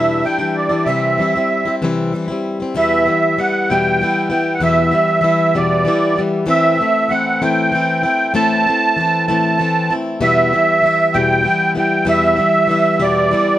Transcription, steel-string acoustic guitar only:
Already playing: E2 B2 E3 G3 D4 E4
0.24 E3 G3 D4 E4
0.39 E3 G3 D4 E4
0.69 E3 G3 D4 E4
0.86 C3 E3 G3 C4 E4
1.18 E3 G3 C4 E4
1.35 G3 C4 E4
1.65 G3 C4 E4
1.82 C3 E3 G3 C4 E4
2.13 E3 G3 C4 E4
2.28 G3 C4 E4
2.60 G3 C4 E4
2.75 E2 B2 E3 G3 B3 E4
3.05 E3 G3 B3 E4
3.38 E3 G3 B3 E4
3.70 E2 B2 E3 G3 B3 E4
4.00 E3 G3 B3 E4
4.30 E3 G3 B3 E4
4.60 E2 B2 E3 G3 B3 E4
4.91 E3 G3 B3 E4
5.21 E3 G3 B3 E4
5.55 E2 B2 E3 G3 B3 E4
5.85 E3 G3 B3 E4
6.16 E3 G3 B3 E4
6.46 A2 E3 A3 C4 E4
6.78 A3 C4 E4
7.09 E3 A3 C4 E4
7.42 A2 E3 A3 C4 E4
7.72 E3 A3 C4 E4
8.03 A3 C4 E4
8.34 A2 E3 A3 C4 E4
8.66 A3 C4 E4
8.97 E3 A3 C4 E4
9.28 A2 E3 A3 C4 E4
9.59 E3 A3 C4 E4
9.90 A3 C4 E4
10.21 E2 B2 E3 G3 B3 E4
10.53 E3 G3 B3 E4
10.82 E3 G3 B3 E4
11.14 E2 B2 E3 G3 B3 E4
11.42 E3 G3 B3 E4
11.75 E3 G3 B3 E4
12.05 E2 B2 E3 G3 B3 E4
12.36 G3 B3 E4
12.40 E3
12.67 E3 G3 B3 E4
12.99 E2 B2 E3 G3 B3 E4
13.31 E3 G3 B3 E4

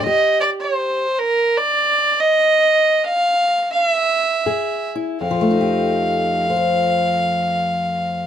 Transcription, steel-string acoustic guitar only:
0.06 F2 G4
4.46 F#2 G#4
4.95 E4
5.21 F2
5.31 F3
5.41 A3
5.51 D#4
5.61 G4
6.50 C5
6.56 F5

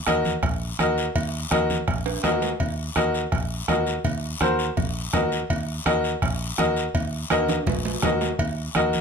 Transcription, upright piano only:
0.06 F#4 A#4 D#5
0.79 F#4 A#4 D#5
1.51 F#4 A#4 D#5
2.23 F#4 A#4 D#5
2.96 F#4 A#4 D#5
3.68 F#4 A#4 D#5
4.41 F#4 A#4 C5
5.13 F#4 A#4 D#5
5.86 F#4 A#4 D#5
6.58 F#4 A#4 D#5
7.30 F#4 A#4 D#5
8.03 F#4 A#4 D#5
8.75 F#4 A#4 D#5

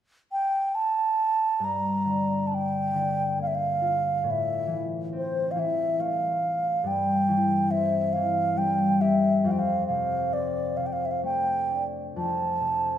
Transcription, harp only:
1.60 G2
2.05 D3
2.51 D4
2.94 D3
3.39 A#3
3.81 F4
4.23 A2
4.67 E3
5.13 C4
5.56 E3
5.99 A3
6.84 G2
7.28 E3
7.70 C4
8.16 E3
8.56 G3
9.01 G4
9.44 F2
9.89 C3
10.33 C4
10.77 C3
11.23 A3
11.70 D4
12.16 F2
12.60 C3

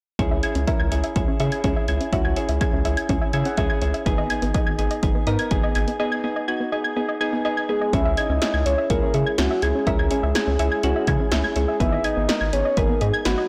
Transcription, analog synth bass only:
0.19 C#2
0.31 C#2
0.55 C#2
0.80 C#2
0.92 C#2
1.16 C#2
1.40 C#3
1.64 C#2
1.88 C#2
2.13 C#2
2.25 C#2
2.49 C#2
2.73 C#2
2.85 C#2
3.09 C#2
3.34 C#3
3.58 C#2
3.82 C#2
4.06 G#1
4.18 G#1
4.42 G#1
4.67 G#1
4.79 G#1
5.03 G#1
5.27 G#2
5.51 G#1
5.75 G#1
7.93 C#2
8.05 C#2
8.29 C#2
8.54 C#2
8.66 C#2
8.90 C#2
9.14 C#3
9.38 C#2
9.63 C#2
9.87 C#2
9.99 C#2
10.23 C#2
10.47 C#2
10.60 C#2
10.84 C#2
11.08 C#3
11.32 C#2
11.56 C#2
11.80 G#1
11.93 G#1
12.17 G#1
12.41 G#1
12.53 G#1
12.77 G#1
13.02 G#2
13.26 G#1

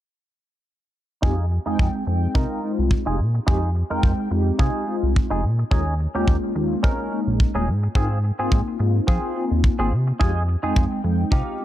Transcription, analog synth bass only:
1.23 F2
1.67 F2
1.79 F2
2.07 F2
2.35 C3
2.79 C2
3.07 F1
3.19 A#2
3.48 F2
3.91 F2
4.03 F2
4.31 F2
4.59 C3
5.03 C2
5.31 F1
5.44 A#2
5.71 D#2
6.15 D#2
6.28 D#2
6.56 D#2
6.84 C3
7.27 A#1
7.55 D#1
7.68 G#2
7.95 G#2
8.40 G#2
8.52 G#2
8.80 G#2
9.08 F3
9.51 D#2
9.79 G#1
9.92 C3
10.21 F2
10.64 F2
10.76 F2
11.04 F2
11.32 C3

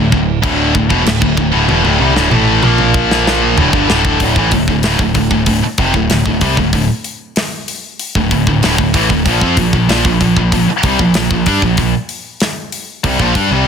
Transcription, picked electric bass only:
Already playing: D1
0.12 D1
0.43 D1
0.75 D1
0.91 E1
1.06 D1
1.22 D1
1.38 D1
1.55 D1
1.70 E1
1.86 D1
2.02 C2
2.17 D1
2.33 A1
2.64 A#1
3.58 D1
3.73 G1
3.90 D1
4.20 D1
4.36 A1
4.52 D1
4.68 D1
4.85 D1
4.99 D1
5.15 D1
5.31 D1
5.47 D1
5.64 muted picked electric bass stroke
5.78 F1
5.94 D1
6.11 D1
6.26 D1
6.42 C2
6.57 D1
6.73 D1
8.15 D1
8.31 D1
8.47 D1
8.63 D1
8.78 D1
8.94 A1
9.10 D1
9.26 A#1
9.42 F2
9.57 A#1
9.73 A#1
9.88 A#1
10.05 A#1
10.21 A#1
10.36 A#1
10.52 A#1
10.67 muted picked electric bass stroke
10.83 C2
10.99 A#1
11.15 A#1
11.31 A#1
11.46 G2
11.62 A#1
11.78 A#1
13.04 C2
13.19 A#1
13.35 G2
13.51 C2

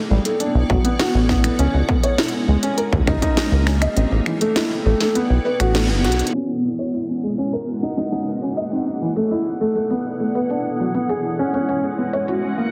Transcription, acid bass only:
0.10 A1
0.55 B1
0.70 A1
1.14 A1
1.59 C#2
1.74 C#2
2.48 C#2
2.93 D#2
3.07 C#2
3.52 C#2
3.97 A1
4.11 A1
4.86 A1
5.30 B1
5.60 A1
5.90 F#1
6.04 B1

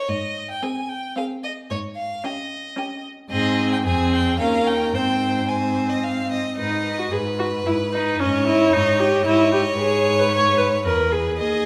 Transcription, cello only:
0.09 G#2
1.71 G#2
3.31 G#2
3.86 F2
4.39 D#2
4.93 G#2
6.58 G#2
7.12 G#2
7.66 G#2
8.21 G#2
8.74 G#2
9.26 G#2
9.79 G#2
10.86 E2
11.41 D#2

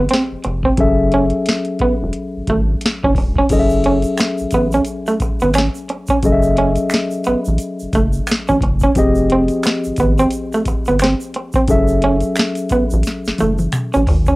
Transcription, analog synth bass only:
0.32 F1
0.46 F1
0.79 F#1
1.81 E1
2.03 E1
2.37 G#1
2.49 G#1
3.05 F#1
3.16 E1
3.51 F#1
4.41 A1
4.54 A1
5.21 G#1
5.43 G#1
6.24 F#1
7.28 A1
7.48 A1
7.82 F#1
7.94 F#1
8.51 A1
8.62 F#1
8.97 F1
9.87 G#1
9.99 G#1
10.67 G1
10.89 G1
11.70 F#1
12.72 A1
12.93 A1
13.27 F#1
13.42 F#1
13.96 A1
14.10 G#1

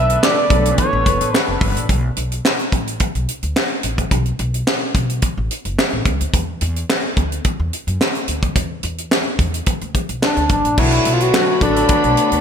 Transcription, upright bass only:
Already playing: B1
0.50 B1
0.93 A1
1.06 F#1
1.21 A1
1.48 F#1
1.61 G1
1.76 A1
1.89 B1
2.17 B1
2.72 A1
3.15 B1
3.43 D2
3.84 A1
4.11 B1
4.39 B1
4.95 B1
5.37 A1
5.65 F#1
5.93 A1
6.05 C#2
6.21 D2
6.33 E2
6.61 E2
7.17 D2
7.60 E2
7.87 F#2
8.28 D2
8.56 E2
8.83 E2
9.39 E2
9.82 D2
10.09 B1
10.37 D2
10.50 G1
10.65 A1
10.78 B1
11.06 B1
11.61 A1
12.04 B1
12.32 D2

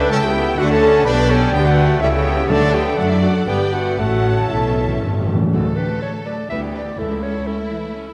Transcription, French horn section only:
0.11 A4
0.23 G4
0.59 F#4
0.71 A4
1.06 B4
1.29 A4
1.54 G4
1.66 F#4
2.00 E4
2.13 G4
2.49 A4
2.73 G4
2.98 F#4
3.11 E4
3.23 F#4
3.47 G4
3.73 F#4
3.99 F#4
4.50 E4
5.52 F#3 D4
6.49 G3 E4
6.98 A3 E4

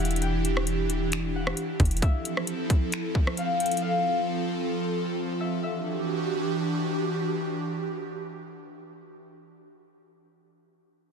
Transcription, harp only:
Already playing: D5 E5
0.00 F#5
0.22 G5
1.36 F#5
2.03 E5
3.38 F5
3.60 G5
3.82 F5
5.40 E5
5.63 E5

